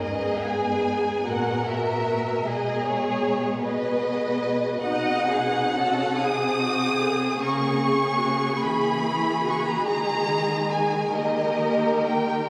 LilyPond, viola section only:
\new Staff \with { instrumentName = "Viola section" } { \time 6/8 \key gis \minor \tempo 4. = 49 << { gis'4. fis'4. | gis'4. gis'4. | fis'4. gis'8 gis'8 a'8 | ais'8 gis'8 fis'8 gis'8 e'8 fis'8 |
gis'4. g'4. | } \\ { b2. | gis4. b4. | dis'8 dis'8 cis'8 bis4. | ais2. |
gis4. ais4. | } >> }